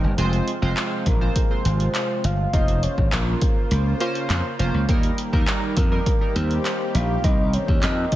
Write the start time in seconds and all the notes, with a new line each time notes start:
Already playing: C3 G3 A#3 C4 D#4 A#4
0.03 G1
0.18 F1 F3 G#3 C4 F4 C5, closed hi-hat
0.33 closed hi-hat
0.48 closed hi-hat
0.62 F1 G#3 C4 F4 C5
0.77 clap, closed hi-hat
1.06 A#1 A#4, kick, closed hi-hat
1.21 G#3 C4 F4 C5
1.36 kick, closed hi-hat
1.50 G#3 C4 F4 C5
1.65 G#1 C5, closed hi-hat
1.80 closed hi-hat
1.95 clap, closed hi-hat
2.24 G1 F5, closed hi-hat
2.53 F1 C#3 A#3 C#4 F4 C5 D#5, kick, closed hi-hat
2.68 closed hi-hat
2.83 C#5, closed hi-hat
2.98 G#1, kick
3.12 A#1 A#4, clap, closed hi-hat
3.41 kick, closed hi-hat
3.71 C#2, closed hi-hat
4.00 A#3 C#4 F4 C5, closed hi-hat
4.15 closed hi-hat
4.30 F2, clap, closed hi-hat
4.59 F1 A#3 C#4 F4 C5, closed hi-hat
4.74 C#2
4.88 D#2 D#3 G3 A#3 D#4 G4 A#4, kick, closed hi-hat
5.03 closed hi-hat
5.18 closed hi-hat
5.33 D#2 G3 A#3 D#4 A#4, kick
5.47 clap, closed hi-hat
5.77 F2 A#4, kick, closed hi-hat
5.91 G3 A#3 D#4 A#4
6.06 kick, closed hi-hat
6.21 G3 A#3 D#4 A#4
6.36 D#2 C5, closed hi-hat
6.51 closed hi-hat
6.65 clap, closed hi-hat
6.95 A#1 F5, closed hi-hat
7.24 C2 D#3 G3 C4 D#4 A#4 D#5, kick, closed hi-hat
7.53 C#5, closed hi-hat
7.68 D#2, kick
7.83 F2 D#5, clap, closed hi-hat
8.12 kick, closed hi-hat